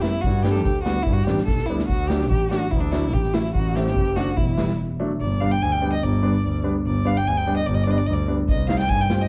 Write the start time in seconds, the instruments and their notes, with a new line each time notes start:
0.01 upright piano G3 B3 E4, violin E4, snare
0.21 double bass G2, violin F#4, kick, snare
0.43 upright piano G3 B3 D4, violin G4, snare
0.51 violin G4 A4
0.55 snare
0.63 double bass D2, violin G4, kick
0.83 upright piano G3 B3 D4, violin F#4, snare
1.03 violin E4
1.07 double bass G2, kick
1.13 violin F#4
1.24 upright piano G3 B3 D4, violin G4, snare
1.28 double bass A1
1.38 snare
1.45 double bass B1, violin A4, kick, snare
1.58 snare
1.66 double bass D2, upright piano G3 B3 D4, violin E4
1.79 snare
1.87 double bass D2, violin F#4, kick
2.08 upright piano F#3 A3 D4, violin G4, snare
2.20 snare
2.29 double bass A1, violin G4, kick
2.51 upright piano F#3 A3 D4, violin F#4, snare
2.71 double bass D2, violin E4, kick
2.80 violin D4
2.91 upright piano F#3 A3 D4, violin E4, snare
3.14 double bass A1, violin G4, kick
3.24 snare
3.33 upright piano F#3 A3 E4, violin E4, snare
3.45 snare
3.54 double bass A1, violin F#4, kick
3.76 upright piano A3 C4 E4, violin G4, snare
3.86 snare
3.96 double bass F#1, kick
4.16 upright piano A3 C4 D4, violin F#4, snare
4.27 snare
4.37 double bass E1, violin E4, kick
4.57 upright piano G3 B3 E4, snare
4.68 snare
5.00 upright piano F#3 A3 D4
5.20 double bass G1, violin D5
5.41 upright piano G3 B3 D4, violin F5
5.51 violin G5
5.62 double bass D2, violin G#5
5.72 violin G5
5.82 upright piano G3 B3 D4
5.92 violin D#5
6.03 double bass G1, violin D5
6.23 upright piano G3 B3 D4
6.44 double bass D2
6.64 upright piano G3 B3 D4
6.86 double bass G1, violin D5
7.05 upright piano G3 B3 D4, violin F5
7.17 violin G5
7.27 double bass D2, violin G#5
7.37 violin G5
7.47 upright piano G3 B3 D4
7.57 violin D#5
7.66 double bass G1, violin D5
7.74 violin D#5
7.84 upright piano G3 B3 D4, violin D5
7.91 violin D#5
7.97 violin D5
8.06 double bass D2, violin D#5
8.13 violin D5
8.28 upright piano G3 B3 D4
8.48 double bass C2, violin D#5, kick
8.69 upright piano G3 C4 D#4, violin F5, snare
8.79 violin G5, snare
8.89 double bass G2, violin G#5, kick
9.00 violin G5, snare
9.10 upright piano G3 C4 F4, snare
9.21 violin D#5